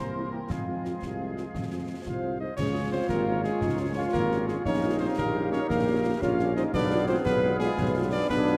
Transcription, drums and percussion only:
0.50 concert bass drum, snare
0.85 snare
1.02 concert bass drum, snare
1.37 snare
1.55 concert bass drum, snare
2.06 concert bass drum, snare
2.58 concert bass drum, snare, crash
3.09 concert bass drum, snare
3.44 snare
3.61 concert bass drum, snare
4.14 concert bass drum, snare
4.32 snare
4.48 snare
4.65 concert bass drum, snare
5.18 concert bass drum, snare
5.53 snare
5.70 concert bass drum, snare
6.22 concert bass drum, snare
6.39 snare
6.57 snare
6.74 concert bass drum, snare, crash
7.26 concert bass drum, snare
7.60 snare
7.77 concert bass drum, snare
8.29 concert bass drum, snare
8.47 snare

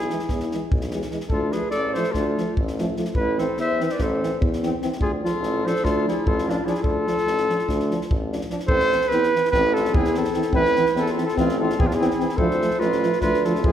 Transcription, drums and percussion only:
0.10 snare
0.19 snare
0.29 kick, snare
0.40 snare
0.52 snare
0.72 kick
0.81 snare
0.91 snare
1.02 snare
1.11 snare
1.20 snare
1.30 kick
1.52 snare
1.71 snare
1.95 snare
2.04 snare
2.14 kick, snare
2.38 snare
2.57 kick
2.68 snare
2.78 snare
2.97 snare
3.05 snare
3.15 kick
3.39 snare
3.57 snare
3.80 snare
3.89 snare
3.98 kick, snare
4.23 snare
4.42 kick
4.53 snare
4.63 snare
4.82 snare
4.93 snare
5.01 kick
5.26 snare
5.43 snare
5.67 snare
5.76 snare
5.85 kick, snare
6.08 snare
6.27 kick
6.38 snare
6.50 snare
6.67 snare
6.75 snare
6.84 kick
7.07 snare
7.18 snare
7.27 snare
7.38 snare
7.50 snare
7.59 snare
7.69 kick, snare
7.80 snare
7.91 snare
8.01 snare
8.11 kick
8.33 snare
8.41 snare
8.50 snare
8.60 snare
8.68 kick
8.80 snare
8.92 snare
9.01 snare
9.11 snare
9.23 snare
9.36 snare
9.45 snare
9.53 kick, snare
9.76 snare
9.85 snare
9.94 kick
10.05 snare
10.15 snare
10.25 snare
10.34 snare
10.42 snare
10.53 kick
10.65 snare
10.76 snare
10.86 snare
10.96 snare
11.06 snare
11.18 snare
11.29 snare
11.38 kick, snare
11.49 snare
11.70 snare
11.80 kick
11.91 snare
12.02 snare
12.11 snare
12.20 snare
12.29 snare
12.38 kick
12.51 snare
12.62 snare
12.71 snare
12.81 snare
12.92 snare
13.03 snare
13.13 snare
13.21 kick, snare
13.34 snare
13.45 snare
13.55 snare
13.64 kick

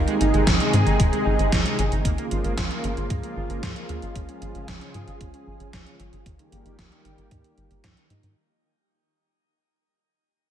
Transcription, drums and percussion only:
0.08 closed hi-hat
0.21 closed hi-hat
0.34 closed hi-hat
0.47 kick, snare, closed hi-hat
0.60 closed hi-hat
0.73 closed hi-hat
0.87 closed hi-hat
1.00 kick, closed hi-hat
1.13 closed hi-hat
1.39 closed hi-hat
1.52 kick, snare, closed hi-hat
1.66 closed hi-hat
1.79 closed hi-hat
1.92 closed hi-hat
2.05 kick, closed hi-hat
2.18 closed hi-hat
2.31 closed hi-hat
2.44 closed hi-hat
2.58 kick, snare, closed hi-hat
2.71 closed hi-hat
2.84 closed hi-hat
2.97 closed hi-hat
3.10 kick, closed hi-hat
3.23 closed hi-hat
3.50 closed hi-hat
3.63 kick, snare, closed hi-hat
3.76 closed hi-hat
3.89 closed hi-hat
4.02 closed hi-hat
4.16 kick, closed hi-hat
4.29 closed hi-hat
4.42 closed hi-hat
4.55 closed hi-hat
4.68 kick, snare, closed hi-hat
4.81 closed hi-hat
4.94 closed hi-hat
5.08 closed hi-hat
5.21 kick, closed hi-hat
5.34 closed hi-hat
5.60 closed hi-hat
5.73 kick, snare, closed hi-hat
5.87 closed hi-hat
6.00 closed hi-hat
6.13 closed hi-hat
6.26 kick, closed hi-hat
6.39 closed hi-hat
6.52 closed hi-hat
6.66 closed hi-hat
6.79 kick, snare, closed hi-hat
6.92 closed hi-hat
7.05 closed hi-hat
7.18 closed hi-hat
7.31 kick, closed hi-hat
7.44 closed hi-hat
7.58 closed hi-hat
7.71 closed hi-hat
7.84 kick, snare, closed hi-hat
7.97 closed hi-hat
8.10 closed hi-hat
8.23 closed hi-hat

